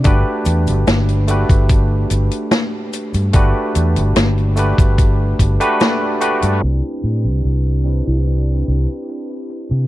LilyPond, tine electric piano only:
\new Staff \with { instrumentName = "Tine electric piano" } { \time 4/4 \key g \major \tempo 4 = 73 <a d' fis' g' b'>4. <a d' fis' g' b'>2~ <a d' fis' g' b'>8 | <a d' fis' g' b'>4. <a d' fis' g' b'>4~ <a d' fis' g' b'>16 <a d' fis' g' b'>8. <a d' fis' g' b'>8 | <c' d' e'>4. <c' d' e' g' b'>2~ <c' d' e' g' b'>8 | }